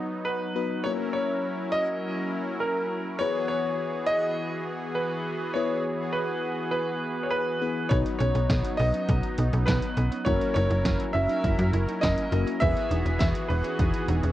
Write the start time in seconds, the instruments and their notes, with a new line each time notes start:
Already playing: analog synth pad F#3 B3 D#4, fm electric piano B3 D#4 F#4 B4
0.25 grand piano B4
0.56 fm electric piano B3 D#4 F#4 B4
0.84 analog synth pad F#3 C#4 E4 A#4, fm electric piano A#3 C#4 F#4 A#4, grand piano C#5
1.13 grand piano C#5
1.72 grand piano D#5
2.60 grand piano A#4
3.19 analog synth pad E3 B3 F#4 G#4, fm electric piano B3 E4 G#4 B4, grand piano C#5
3.48 grand piano C#5
4.06 grand piano D#5
4.95 grand piano B4
5.54 fm electric piano B3 E4 G#4 B4, grand piano C#5
6.13 grand piano B4
6.71 grand piano B4
7.23 grand piano C#5
7.31 grand piano B4
7.62 fm electric piano B3 E4 G#4 B4
7.89 fm bass B1, analog synth pad F#3 B3 D#4, fm electric piano B3 D#4 F#4 B4, synth arpeggio sound D#4, grand piano C#5, kick, closed hi-hat
8.06 closed hi-hat
8.19 fm bass B1, synth arpeggio sound C#4, grand piano C#5, closed hi-hat
8.35 fm bass B1, synth arpeggio sound D#4, closed hi-hat
8.50 fm bass B1, synth arpeggio sound B3, kick, snare, closed hi-hat
8.64 closed hi-hat
8.77 fm bass B1, synth arpeggio sound B3, grand piano D#5, open hi-hat
8.94 synth arpeggio sound C#4, closed hi-hat
9.08 fm bass B1, synth arpeggio sound D#4, kick, closed hi-hat
9.23 closed hi-hat
9.38 fm bass B1, synth arpeggio sound D#4, closed hi-hat
9.53 fm bass B1, synth arpeggio sound C#4, closed hi-hat
9.66 fm bass B1, synth arpeggio sound B3, grand piano B4, kick, snare, clap, closed hi-hat
9.82 closed hi-hat
9.97 fm bass B1, synth arpeggio sound C#4, closed hi-hat
10.12 synth arpeggio sound B3, closed hi-hat
10.25 fm bass F#1, analog synth pad F#3 C#4 E4 A#4, fm electric piano A#3 C#4 F#4 A#4, synth arpeggio sound E4, grand piano C#5, kick, closed hi-hat
10.41 closed hi-hat
10.54 fm bass F#1, synth arpeggio sound D#4, grand piano C#5, closed hi-hat
10.70 fm bass F#1, synth arpeggio sound E4, closed hi-hat
10.85 fm bass F#1, synth arpeggio sound C#4, kick, snare, closed hi-hat
11.00 closed hi-hat
11.13 fm bass F#1, synth arpeggio sound C#4, grand piano E5, open hi-hat
11.29 synth arpeggio sound D#4, closed hi-hat
11.44 fm bass F#1, synth arpeggio sound E4, kick, closed hi-hat
11.59 fm bass F#2, closed hi-hat
11.73 fm bass F#1, synth arpeggio sound E4, closed hi-hat
11.88 synth arpeggio sound D#4, closed hi-hat
12.01 fm bass F#1, synth arpeggio sound C#4, grand piano D#5, kick, snare, clap, closed hi-hat
12.18 closed hi-hat
12.32 fm bass F#1, fm electric piano A#3 C#4 F#4 A#4, synth arpeggio sound D#4, closed hi-hat
12.47 synth arpeggio sound C#4, closed hi-hat
12.60 fm bass E1, analog synth pad E3 B3 F#4 G#4, fm electric piano B3 E4 G#4 B4, synth arpeggio sound E4, grand piano E5, kick, closed hi-hat
12.77 closed hi-hat
12.91 fm bass E1, synth arpeggio sound D#4, closed hi-hat
13.05 fm bass E1, synth arpeggio sound E4, closed hi-hat
13.19 fm bass E1, synth arpeggio sound B3, grand piano E5, kick, snare, closed hi-hat
13.35 closed hi-hat
13.48 fm bass E1, synth arpeggio sound B3, grand piano B4, open hi-hat
13.64 synth arpeggio sound C#4, closed hi-hat
13.79 fm bass E1, synth arpeggio sound D#4, kick, closed hi-hat
13.94 closed hi-hat
14.08 fm bass E1, synth arpeggio sound D#4, closed hi-hat
14.23 fm bass E1, synth arpeggio sound C#4, closed hi-hat